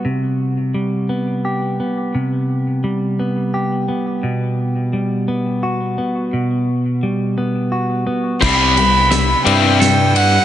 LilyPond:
<<
  \new Staff \with { instrumentName = "Violin" } { \time 6/8 \key c \lydian \tempo 4. = 57 r2. | r2. | r2. | r2. |
b''4. g''4 fis''8 | }
  \new Staff \with { instrumentName = "Clean electric guitar" } { \time 6/8 \key c \lydian r2. | r2. | r2. | r2. |
c''4 e''4 a'4 | }
  \new Staff \with { instrumentName = "Clean electric guitar" } { \time 6/8 \key c \lydian c4 g8 b8 g'8 b8 | c4 g8 b8 g'8 b8 | b,4 g8 b8 fis'8 b8 | b,4 g8 b8 fis'8 b8 |
c8 b8 g8 e'4 g8 | }
  \new Staff \with { instrumentName = "Distorted electric guitar" } { \clef bass \time 6/8 \key c \lydian r2. | r2. | r2. | r2. |
<c g c'>8 <c g>8 <c g>8 <c g c'>8 <c g>8 r8 | }
  \new Staff \with { instrumentName = "Picked electric bass" } { \clef bass \time 6/8 \key c \lydian r2. | r2. | r2. | r2. |
c,4. g,4. | }
  \new DrumStaff \with { instrumentName = "Drums" } \drummode { \time 6/8 r4. r4. | r4. r4. | r4. r4. | r4. r4. |
<cymc bd sn>8 cymr8 <cymr sn>8 cymr8 <cymr sn>8 cymr8 | }
>>